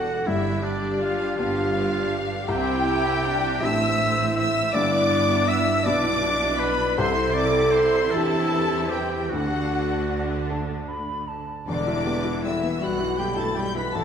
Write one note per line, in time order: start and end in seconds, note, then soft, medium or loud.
0.00 0.15 E1 medium
0.00 0.25 E1 medium
0.00 0.15 E2 medium
0.00 0.25 E2 medium
0.00 0.25 G3 medium
0.00 0.27 G3 medium
0.00 0.24 B3 medium
0.00 0.24 D4 soft
0.00 0.27 D4 medium
0.00 0.25 F#4 medium
0.00 0.28 F#4 medium
0.00 0.28 A4 medium
0.00 0.28 F#5 loud
0.00 0.28 F#5 medium
0.25 1.25 G1 medium
0.25 2.44 G1 medium
0.25 1.25 G2 medium
0.25 2.44 G2 medium
0.25 0.65 D4 medium
0.25 0.63 E4 medium
0.25 0.65 E4 medium
0.25 2.31 G4 medium
0.25 0.64 E5 loud
0.25 0.65 E5 medium
0.30 0.65 G4 medium
0.62 1.01 D4 medium
0.62 1.01 D5 medium
0.62 1.01 D5 loud
0.66 1.73 D4 medium
0.66 1.73 G4 medium
0.99 1.36 F4 loud
0.99 1.38 F4 medium
0.99 1.37 F5 medium
0.99 1.37 F5 loud
1.36 2.35 G1 medium
1.36 2.34 G2 loud
1.36 2.44 B3 medium
1.36 2.44 D4 medium
1.36 2.18 F4 loud
1.36 2.20 F4 medium
1.36 2.45 G4 medium
1.36 2.46 F5 medium
1.36 2.46 F5 loud
1.76 2.47 D4 medium
1.76 2.47 G4 medium
2.45 3.60 C2 medium
2.45 3.58 C3 medium
2.45 4.71 C3 medium
2.45 2.83 C4 loud
2.45 2.85 E4 medium
2.45 6.95 E4 loud
2.45 3.63 G4 loud
2.45 3.66 G4 loud
2.45 3.63 G5 loud
2.49 3.60 C2 medium
2.86 3.24 E4 loud
3.25 3.63 D4 loud
3.60 4.75 A1 medium
3.60 4.75 A2 medium
3.60 4.70 C4 medium
3.60 4.75 C4 medium
3.60 4.71 D4 medium
3.60 4.71 E4 medium
3.60 4.36 E5 loud
3.60 4.36 E6 loud
3.60 4.37 E6 loud
3.65 4.39 E5 loud
4.36 4.72 E5 medium
4.36 4.76 E5 loud
4.36 4.74 E6 loud
4.73 5.83 G1 medium
4.73 6.94 G1 medium
4.73 5.83 G2 loud
4.73 6.95 G2 medium
4.73 5.84 B3 loud
4.73 5.86 D4 medium
4.73 5.49 D5 loud
4.73 5.50 D5 loud
4.73 5.48 D6 loud
4.73 5.47 D6 loud
5.48 5.85 E5 loud
5.48 5.87 E5 loud
5.48 5.86 E6 loud
5.83 6.98 B1 loud
5.83 6.98 B2 loud
5.83 6.94 B3 medium
5.83 6.95 D4 medium
5.83 6.97 D4 loud
5.83 6.95 E4 medium
5.83 6.60 D5 loud
5.83 6.61 D5 loud
5.83 6.59 D6 loud
5.88 6.62 D6 loud
6.59 6.99 B4 medium
6.59 6.97 B4 loud
6.59 6.98 B5 loud
6.59 6.99 B5 loud
6.97 8.13 C2 medium
6.97 9.27 C2 medium
6.97 9.27 C3 medium
6.97 8.14 C3 medium
6.97 9.31 E4 loud
6.97 8.11 A4 loud
6.97 7.34 C5 loud
6.97 7.36 C5 loud
6.97 7.36 C6 loud
6.97 7.37 C6 loud
7.34 7.73 D5 loud
7.34 7.75 D5 loud
7.34 7.74 D6 loud
7.39 7.76 D6 loud
7.71 8.12 C5 loud
7.71 8.14 C5 loud
7.71 8.13 C6 medium
7.75 8.14 C6 loud
8.11 9.29 E2 medium
8.11 9.29 E3 medium
8.11 9.31 C4 medium
8.11 9.32 G4 medium
8.11 8.91 A4 loud
8.11 8.93 A4 loud
8.11 8.92 A5 loud
8.15 9.28 C4 medium
8.15 9.28 D4 medium
8.15 9.29 E4 medium
8.15 8.93 A5 loud
8.90 9.32 G4 medium
8.90 9.28 G4 medium
8.90 9.32 G5 medium
8.90 9.32 G5 loud
9.28 11.47 D2 medium
9.28 11.47 D3 medium
9.28 10.45 F#4 loud
9.28 10.48 F#4 medium
9.28 11.08 F#4 medium
9.28 10.47 F#5 medium
9.33 11.64 D2 medium
9.33 11.64 D3 medium
9.33 11.43 A3 medium
9.33 11.47 D4 medium
9.33 10.48 F#5 loud
10.50 11.64 A3 medium
10.50 11.64 D4 soft
10.50 11.65 A4 medium
10.50 10.90 A5 medium
10.88 11.30 B5 medium
11.28 11.68 A5 medium
11.66 12.63 E1 medium
11.66 12.63 E2 medium
11.66 13.90 E2 medium
11.66 12.39 D3 medium
11.66 11.85 D3 medium
11.66 12.04 G3 medium
11.66 12.45 D4 loud
11.66 12.40 D5 medium
11.66 12.41 D6 loud
11.87 12.06 E3 medium
11.87 12.18 E4 medium
12.05 12.25 G3 medium
12.05 12.37 B3 medium
12.25 12.44 E3 medium
12.25 12.55 E4 medium
12.43 12.63 D3 medium
12.43 12.82 E3 medium
12.43 12.74 G3 medium
12.43 12.81 E4 medium
12.43 12.82 E5 medium
12.43 12.82 E6 loud
12.63 12.82 E3 medium
12.63 12.93 B3 medium
12.79 13.75 B1 medium
12.79 13.75 B2 medium
12.79 12.99 G3 medium
12.79 13.11 G3 medium
12.79 13.18 F#4 medium
12.79 13.19 F#4 medium
12.79 13.18 F#5 medium
12.79 13.97 B5 medium
12.79 13.19 F#6 loud
12.98 13.18 E3 medium
12.98 13.29 E4 medium
13.18 13.37 D3 medium
13.18 13.49 G3 medium
13.18 13.37 G4 medium
13.18 13.37 G5 medium
13.18 13.38 G6 medium
13.23 13.40 G3 medium
13.36 13.56 E3 medium
13.36 13.67 E4 medium
13.36 13.58 A4 medium
13.36 13.56 A5 medium
13.36 13.57 A6 loud
13.40 13.58 A3 medium
13.55 13.75 G3 medium
13.55 13.87 G3 medium
13.55 13.76 G3 medium
13.55 13.78 G4 medium
13.55 13.74 G5 medium
13.55 13.76 G6 loud
13.74 13.92 E3 medium
13.74 13.94 B3 medium
13.74 13.94 E4 medium
13.74 13.95 B4 medium
13.74 13.93 B5 medium
13.74 13.94 B6 medium
13.93 14.04 A1 medium
13.93 14.04 A2 medium
13.93 14.04 E3 medium
13.93 14.04 A3 loud
13.93 14.04 A4 medium
13.93 14.04 A4 loud
13.93 14.04 A5 loud
13.93 14.04 A5 medium
13.93 14.04 A6 loud